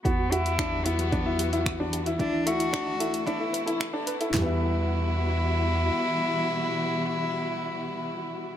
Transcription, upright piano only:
X:1
M:4/4
L:1/16
Q:1/4=112
K:Em
V:1 name="Upright piano"
F2 F2 D2 E2 D E2 E2 D2 E | E2 E2 D2 E2 D E2 E2 D2 E | [E,G,B,E]16- | [E,G,B,E]16 |]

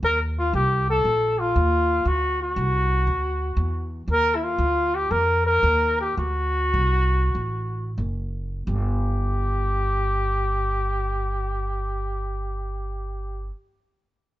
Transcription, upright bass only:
X:1
M:4/4
L:1/8
Q:"Swing" 1/4=108
K:Dphr
V:1 name="Upright bass" clef=bass
E,,2 C,,2 B,,,2 E,,2 | D,,2 C,,2 D,,2 =E,,2 | E,,2 D,,2 F,,2 E,,2 | D,,2 C,,2 A,,,2 ^F,,,2 |
G,,,8- | G,,,8 |]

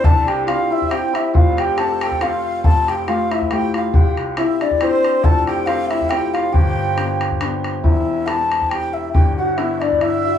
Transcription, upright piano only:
X:1
M:3/4
L:1/8
Q:"Swing" 1/4=138
K:Flyd
V:1 name="Upright piano"
C,,2 [CEG]2 [CEG]2 | [F,,,F,,]2 [CFA]2 [CFA]2 | [F,,,F,,]2 [A,FG]2 [A,FG]2 | C,,2 [CEG]2 [CEG]2 |
[F,,,F,,]2 [CFA]2 [CFA]2 | [G,,,G,,]2 [B,DG]2 [B,DG]2 | [K:Em] [E,,,E,,]2 [B,EG]2 z2 | [G,,,G,,]2 [B,DG]2 z2 |]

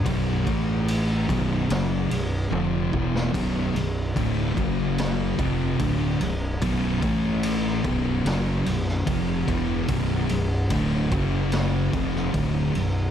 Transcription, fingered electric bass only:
X:1
M:4/4
L:1/8
Q:1/4=73
K:Bm
V:1 name="Fingered electric bass" clef=bass
B,,,, A,,,2 B,,,, F,,, B,,,, ^E,,, =E,,, | B,,,, B,,,, D,,, F,,,2 ^E,,, D,,, B,,,, | B,,,, A,,,2 B,,,, F,,, B,,,, ^E,,, =E,,, | B,,,, B,,,, D,,, F,,,2 ^E,,, D,,, B,,,, |]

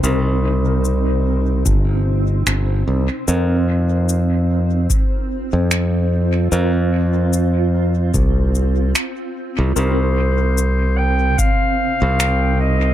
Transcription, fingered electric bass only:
X:1
M:4/4
L:1/16
Q:"Swing 16ths" 1/4=74
K:Cm
V:1 name="Fingered electric bass" clef=bass
C,,8 G,,,4 G,,,2 C,, z | F,,8 z3 F,,4- F,, | F,,8 C,,4 z3 C,, | C,,8 z3 C,,4- C,, |]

